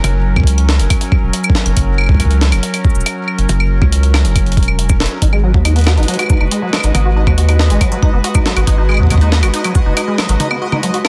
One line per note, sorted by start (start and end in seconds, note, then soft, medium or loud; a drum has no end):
0.00 0.38 F#1 medium
0.00 5.18 F#3 medium
0.00 5.18 C#4 medium
0.00 5.18 A#4 medium
0.00 closed hi-hat medium
0.00 mid tom medium
0.00 claves medium
0.36 0.81 C#2 loud
0.36 kick medium
0.36 mid tom medium
0.36 claves medium
0.40 kick medium
0.44 kick medium
0.44 closed hi-hat medium
0.58 closed hi-hat soft
0.58 claves medium
0.69 snare loud
0.79 0.87 F#1 medium
0.79 closed hi-hat medium
0.90 kick medium
0.90 closed hi-hat medium
0.90 claves medium
1.01 closed hi-hat medium
1.12 kick loud
1.12 claves medium
1.23 1.30 E1 medium
1.33 closed hi-hat medium
1.44 claves medium
1.44 shaker medium
1.50 kick loud
1.55 snare loud
1.66 1.73 F#1 loud
1.66 closed hi-hat soft
1.66 claves medium
1.77 2.11 F#1 medium
1.77 kick medium
1.77 closed hi-hat medium
1.98 claves medium
2.01 claves medium
2.09 2.54 C#2 loud
2.09 kick loud
2.09 claves soft
2.12 claves soft
2.14 kick medium
2.14 claves soft
2.17 closed hi-hat medium
2.17 claves soft
2.20 kick medium
2.20 claves medium
2.25 kick medium
2.31 closed hi-hat soft
2.41 snare loud
2.52 2.59 F#1 medium
2.52 closed hi-hat medium
2.52 claves medium
2.63 closed hi-hat medium
2.74 closed hi-hat medium
2.74 claves medium
2.85 kick loud
2.85 shaker soft
2.90 shaker soft
2.95 3.03 E1 medium
2.95 shaker soft
3.01 shaker soft
3.06 closed hi-hat medium
3.06 claves medium
3.28 claves medium
3.38 3.46 F#1 medium
3.38 closed hi-hat soft
3.49 3.83 F#1 loud
3.49 closed hi-hat medium
3.49 mid tom medium
3.49 shaker medium
3.60 claves medium
3.82 4.26 C#2 loud
3.82 kick loud
3.82 mid tom medium
3.82 claves soft
3.92 closed hi-hat medium
4.03 closed hi-hat soft
4.14 snare loud
4.14 claves medium
4.25 4.59 F#1 medium
4.25 closed hi-hat medium
4.36 kick medium
4.36 closed hi-hat medium
4.36 claves soft
4.46 closed hi-hat soft
4.52 closed hi-hat soft
4.57 5.06 E1 medium
4.57 kick loud
4.57 closed hi-hat soft
4.63 closed hi-hat soft
4.68 claves medium
4.79 closed hi-hat medium
4.90 kick loud
4.90 claves soft
4.90 shaker medium
5.00 snare loud
5.06 closed hi-hat soft
5.22 5.56 G#1 loud
5.22 11.08 G#3 medium
5.22 5.27 D#4 medium
5.22 11.08 F#4 medium
5.22 11.08 B4 medium
5.22 11.08 D#5 medium
5.22 kick medium
5.22 closed hi-hat medium
5.33 5.43 G#3 medium
5.33 claves medium
5.44 5.52 F#3 medium
5.54 5.99 D#2 loud
5.54 5.59 F#3 loud
5.54 kick loud
5.65 5.73 D#4 medium
5.65 closed hi-hat medium
5.65 claves medium
5.76 5.81 B3 medium
5.76 closed hi-hat soft
5.79 closed hi-hat soft
5.81 closed hi-hat soft
5.84 5.92 F#4 medium
5.84 snare loud
5.84 closed hi-hat soft
5.84 claves medium
5.97 6.05 G#1 medium
5.97 6.06 D#4 medium
5.97 closed hi-hat soft
6.03 closed hi-hat soft
6.08 6.16 F#3 medium
6.08 closed hi-hat medium
6.14 closed hi-hat soft
6.19 6.24 F#4 medium
6.19 closed hi-hat medium
6.19 claves medium
6.23 claves medium
6.26 6.38 D#4 medium
6.26 claves soft
6.30 kick loud
6.30 claves soft
6.30 shaker medium
6.33 claves soft
6.37 6.48 F#1 medium
6.37 6.46 D#4 medium
6.37 claves soft
6.41 claves medium
6.51 6.62 G#3 medium
6.51 closed hi-hat medium
6.62 6.70 F#3 medium
6.73 6.78 F#3 loud
6.73 snare loud
6.73 claves soft
6.77 claves soft
6.80 6.91 G#1 medium
6.80 6.92 D#4 medium
6.80 closed hi-hat soft
6.80 claves medium
6.80 shaker medium
6.95 7.29 G#1 loud
6.95 6.99 B3 medium
6.95 closed hi-hat medium
6.95 mid tom loud
6.95 claves medium
7.05 7.10 F#4 medium
7.16 7.24 D#4 medium
7.27 7.72 D#2 loud
7.27 7.35 F#3 medium
7.27 kick loud
7.27 mid tom loud
7.27 claves medium
7.38 7.43 F#4 medium
7.38 closed hi-hat medium
7.49 7.57 D#4 medium
7.49 closed hi-hat soft
7.49 claves medium
7.59 7.64 D#4 medium
7.59 snare loud
7.70 7.77 G#1 medium
7.70 7.80 G#3 medium
7.70 closed hi-hat soft
7.81 7.89 F#3 medium
7.81 kick medium
7.81 closed hi-hat medium
7.81 claves medium
7.92 7.97 F#3 loud
7.92 closed hi-hat soft
8.02 8.11 D#4 medium
8.02 kick loud
8.02 claves medium
8.13 8.21 F#1 medium
8.13 8.18 B3 medium
8.24 8.29 F#4 medium
8.24 closed hi-hat medium
8.35 8.43 D#4 medium
8.35 kick loud
8.35 claves medium
8.35 shaker medium
8.46 8.54 F#3 medium
8.46 snare loud
8.56 8.64 G#1 loud
8.56 8.61 F#4 medium
8.56 closed hi-hat soft
8.56 claves medium
8.67 9.01 G#1 loud
8.67 8.75 D#4 medium
8.67 kick medium
8.67 closed hi-hat medium
8.78 8.83 D#4 medium
8.89 8.99 G#3 medium
8.89 claves soft
8.92 claves soft
8.94 claves medium
8.97 9.44 D#2 loud
8.97 9.08 F#3 medium
8.97 kick soft
8.97 claves medium
9.03 kick medium
9.07 9.15 F#3 loud
9.07 kick medium
9.07 closed hi-hat medium
9.07 claves medium
9.10 kick medium
9.14 kick medium
9.18 9.29 D#4 medium
9.18 kick medium
9.18 closed hi-hat soft
9.32 9.37 B3 medium
9.32 snare loud
9.43 9.50 G#1 medium
9.43 9.48 F#4 medium
9.43 closed hi-hat medium
9.43 claves medium
9.54 9.62 D#4 medium
9.54 closed hi-hat medium
9.64 9.73 F#3 medium
9.64 closed hi-hat medium
9.64 claves medium
9.75 9.80 F#4 medium
9.75 kick loud
9.75 shaker medium
9.86 9.93 F#1 medium
9.86 9.94 D#4 medium
9.97 10.02 D#4 medium
9.97 closed hi-hat medium
9.97 claves medium
10.08 10.18 G#3 medium
10.18 10.26 F#3 medium
10.18 snare loud
10.18 claves medium
10.29 10.36 G#1 loud
10.29 10.34 F#3 loud
10.29 closed hi-hat soft
10.29 shaker medium
10.40 10.48 D#4 medium
10.40 closed hi-hat medium
10.40 mid tom loud
10.51 10.56 B3 medium
10.51 claves medium
10.62 10.66 F#4 medium
10.72 10.80 D#4 medium
10.72 mid tom medium
10.72 claves medium
10.83 10.91 F#3 medium
10.83 closed hi-hat medium
10.94 10.99 F#4 medium
10.94 closed hi-hat soft
11.05 11.08 D#4 medium
11.05 snare loud
11.05 claves medium